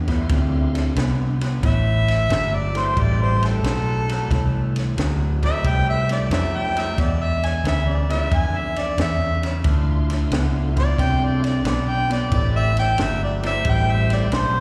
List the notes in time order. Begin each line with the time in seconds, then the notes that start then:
Already playing: E2
0.07 D3 A3 B3 D4 E4 F4 C6, kick, snare, ride
0.29 D2 D3 C4, kick, snare, ride
0.75 snare, ride
0.96 C2 D3 B3, snare, ride
1.41 D3 B3, snare, ride
1.63 A1 A2 E3 E5, kick, snare, ride
2.08 snare, ride
2.30 G1 A2 F#3, snare, ride
2.55 D5
2.74 A2 F#3 A3 C4 E4 B4 G5, snare, ride
2.78 C5
2.97 A1 A2 G3 D5, kick, ride
3.22 C5
3.43 A4, snare, ride
3.63 B1 A2 F#3, snare, ride
4.09 A2 F#3, snare, ride
4.30 C2 A2 E3, kick, snare, ride
4.76 snare, ride
4.97 D2 A2 F#3, snare, ride
5.43 A2 F#3 A3 C4 E4 B4 E5 G5, kick, snare, ride
5.64 C2 A2 G3 G5, kick, ride
5.90 E5
6.09 A3 C4 E4 D5 G5, snare, ride
6.30 F2 A2 F#3, snare, ride
6.35 E5
6.57 G5
6.76 A2 F#3 E5, snare, ride
6.97 E2 B2 D5, kick, snare, ride
7.24 E5
7.43 G#5, snare, ride
7.64 D2 E2 C#3, snare, ride
7.68 E5
7.90 D5
8.09 E2 C#3 G#3 E4 F4 B4 D5 E5, snare, ride
8.31 E2 F2 D3, kick, ride
8.36 G#5
8.58 E5
8.76 D5, snare, ride
8.98 E2 C#3, snare, ride
9.02 E5
9.43 E2 C#3, snare, ride
9.64 D2 D3 A3 D4 E4 F4 C6, kick, snare, ride
10.10 snare, ride
10.31 C#2 D3 B3, snare, ride
10.76 D3 B3 D5, kick, snare, ride
10.98 C2 D3 C4 G5, kick, snare, ride
11.24 D5
11.44 D5, snare, ride
11.64 B1 D3 B3 D5, snare, ride
11.91 G5
12.09 D3 B3 D5, snare, ride
12.31 A1 A2 E3 A3 C4 E4 G4 B4 D5, kick, ride
12.56 E5
12.77 G5, snare, ride
12.98 G1 A2 F#3, snare, ride
13.02 E5
13.24 D5
13.43 A2 F#3 A3 C4 E4 C5 E5 G5, snare, ride
13.65 A1 A2 G3, kick, ride
13.69 G5
13.92 E5
14.10 D5, snare, ride
14.32 B1 A2 F#3, snare, ride
14.36 C5